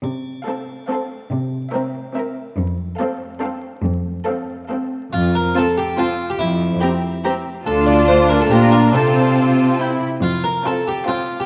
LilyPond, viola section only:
\new Staff \with { instrumentName = "Viola section" } { \time 3/4 \key f \major \tempo 4 = 142 r4 c'4 c'4 | r4 c'4 c'4 | r4 c'4 c'4 | r4 c'4 c'4 |
r4 c'4 c'4 | r4 c'4 c'4 | d'2 d'4 | c'2 c'8 r8 |
r4 c'4 c'4 | }